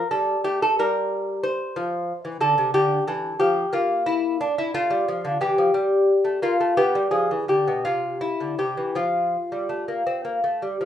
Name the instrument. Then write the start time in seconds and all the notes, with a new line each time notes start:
lute
Already playing: A#4
0.11 G3 A4
0.44 A3 G4
0.62 A4
0.79 G3 A#4
1.43 C5
1.76 F3
2.25 E3
2.41 D3 A4
2.58 C3
2.74 D3 G4
3.07 E3 A4
3.40 F3 G4
3.73 A#3 F4
4.06 E4
4.41 D4
4.58 E4
4.74 A3 F4
4.90 G3
5.08 F3
5.25 D3
5.41 E3 G4
5.58 F3
5.74 G3
6.25 A3
6.42 A#3 F4
6.60 A3
6.77 B3 G4
6.95 G3
7.11 F3 G#4
7.31 E3
7.48 D3 G4
7.68 B2
7.85 C3 F4
8.21 E4
8.40 D3
8.59 C3 G4
8.77 E3
8.95 F3 F4
9.52 G3
9.69 A3
9.88 A#3
10.07 C4
10.25 A#3
10.44 A3
10.62 G3
10.81 F3